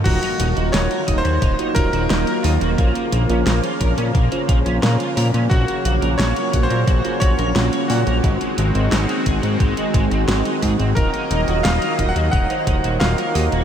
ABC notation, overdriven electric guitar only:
X:1
M:4/4
L:1/16
Q:1/4=88
K:Ebdor
V:1 name="Overdriven electric guitar"
E E E G E B e G E E E G E B e G | B, B, B, D B, F B D B, B, B, D B, F B D | G G G B G d g B G G G B G d g B | A, A, A, C A, E A C A, A, A, C A, E A C |
E E E G E B e G E E E G E B e G |]